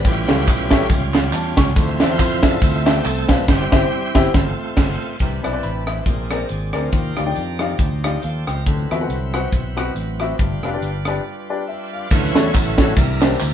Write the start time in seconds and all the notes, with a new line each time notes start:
0.04 A1 A2 G3 C#4 E4 F4 G4 B4, kick, ride, tambourine
0.28 C#2 C#4 G4 A4 F5, snare, ride, tambourine
0.47 B1, kick, clap, ride, tambourine
0.71 A1 C#4 G4 A4 E5, kick, snare, ride, tambourine
0.89 C#2, kick, ride, tambourine
1.14 F5, snare, clap, ride, tambourine
1.33 E2 A5, clap, ride, tambourine
1.57 C#2 C#6, kick, snare, ride, tambourine
1.76 D2 D3 F3 C4 E4, kick, ride, tambourine
2.00 E2 D4 F4 C5 D5 E5, snare, ride, tambourine
2.10 E4 F4 C5
2.19 F2, kick, clap, ride, tambourine
2.43 D4 F4 A4 C5 E5, kick, snare, ride, tambourine
2.62 D2 A3 C4 F4, kick, ride, tambourine
2.86 D4 F4 G4 C5 E5, snare, clap, ride, tambourine
3.04 C2 A4, clap, ride, tambourine
3.29 B1 D4 F4 B4 C5 F5, kick, snare, ride, tambourine
3.48 G1 G3 C4 E4 G4 C5, kick, snare, crash
3.72 G1 C4 E4 G4 E5, kick, snare
4.15 G1 C4 E4 G4 E5, kick, snare
4.34 G1 A3 C4 F4, kick, snare
4.77 G1, kick, snare, crash
5.19 C2 C3 E3 C4 D4 A#4, kick, closed hi-hat
5.25 B4
5.43 B1 C4 E4 B4 D5, cross-stick, closed hi-hat
5.53 C4 E4 B4 D5
5.63 A1 B5, closed hi-hat
5.87 E5, cross-stick, closed hi-hat
6.06 A#1 A#2 G#3 C4 D4 A#4, kick, closed hi-hat
6.30 C4 G#4 A#4 D5, cross-stick, closed hi-hat
6.49 G#1 G#4 D5, closed hi-hat
6.73 D2 C4 F4 G#4 A#4 D5, cross-stick, closed hi-hat
6.92 D#2 D#3 F3 D4 D#4 F#4, kick, closed hi-hat
6.98 G4
7.17 D2 D#4 G4 D5 F5, cross-stick, closed hi-hat
7.26 D#4 G4 D5 G5
7.36 F2, closed hi-hat
7.59 D#4 G4 D5 F5, cross-stick, closed hi-hat
7.79 D2, kick, closed hi-hat
8.04 D#4 G4 D5 D#5 F5, cross-stick, closed hi-hat
8.22 D#2 A4 D5 F5 G5, closed hi-hat
8.46 C#2 C4 F4 G5 A#5, cross-stick, closed hi-hat
8.66 D2 D3 F#3 C4 E4 B4, kick, closed hi-hat
8.91 E2 C4 F#4 B4 E5, cross-stick, closed hi-hat
9.01 C4 F#4 B4 F#5
9.08 C2, closed hi-hat
9.34 C4 F#4 B4 F#5, cross-stick, closed hi-hat
9.52 B1, kick, closed hi-hat
9.76 C4 F#4 B4 F#5, cross-stick, closed hi-hat
9.95 A1, closed hi-hat
10.20 C4 F#4 B4 E5, cross-stick, closed hi-hat
10.38 G1 G2 G3 D4 F4 B4, kick, closed hi-hat
10.63 F1 D4 G4 B4 F5, cross-stick, closed hi-hat
10.74 D4 G4 B4 D5
10.81 G1, closed hi-hat
11.05 D4 G4 B4 D5, cross-stick, closed hi-hat
11.50 D4 G4 B4 D5
11.67 B4 E5
11.93 B4 D5 F5
12.10 D2 D3 E3 F#3 C#4 E4 F#4 C#5, kick, crash, tambourine
12.35 E2 A3 D4 E4 F#4 C#5, snare, ride, tambourine
12.54 A1 C#4 F#4 A4, kick, clap, ride, tambourine
12.78 A3 D4 E4 F#4 C#5, kick, snare, ride, tambourine
12.95 C2 C3 E3 A#3 D4 E4 A#4, kick, ride, tambourine
13.21 A#3 D4 E4 G4 C5, snare, clap, ride, tambourine
13.40 D2 A#4, clap, ride, tambourine